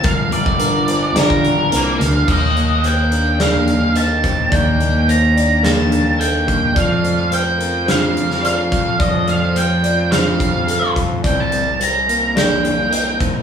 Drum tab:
CC |----------------|x---------------|----------------|----------------|
HH |x-x-x-x-x-x-x-x-|--x-x-x-x-x-x-x-|x-x-x-x-x-x-x-x-|x-x-x-x-x-x-x-x-|
SD |--------o-----o-|--------o-------|--------o-------|--------o--o----|
BD |o--o-----o------|o-------------o-|o-------------o-|o-------------o-|

CC |----------------|----------------|
HH |x-x-x-x-x-x-x-x-|x-x-x-x-x-x-x-x-|
SD |--------o-------|--------o-------|
BD |o---------o---o-|o-------------o-|